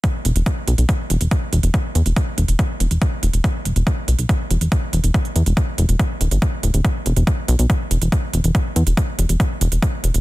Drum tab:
HH |x-xxx-xxx-xxx-xx|x-xxx-xxx-xxx-xx|x-xxx-xxx-xxx-xx|xxxxx-xxx-xxx-xx|
BD |o---o---o---o---|o---o---o---o---|o---o---o---o---|o---o---o---o---|

HH |x-xxx-xxx-xxx-xx|x-xxx-xxx-xxx-xx|
BD |o---o---o---o---|o---o---o---o---|